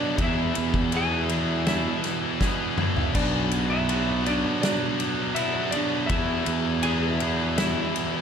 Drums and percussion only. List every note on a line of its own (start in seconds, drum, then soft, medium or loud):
0.18 kick loud
0.18 ride loud
0.55 ride medium
0.74 kick medium
0.92 ride loud
1.29 ride medium
1.67 snare loud
1.67 ride medium
2.04 snare soft
2.04 ride medium
2.41 kick medium
2.41 snare medium
2.78 mid tom medium
2.97 floor tom medium
3.15 kick loud
3.15 splash medium
3.15 crash loud
3.51 ride medium
3.89 ride loud
4.26 ride medium
4.63 snare loud
4.63 ride loud
5.00 ride medium
5.36 ride loud
5.72 ride medium
6.09 kick loud
6.09 ride loud
6.46 ride medium
6.83 ride loud
7.20 ride medium
7.58 snare loud
7.58 ride loud
7.96 ride medium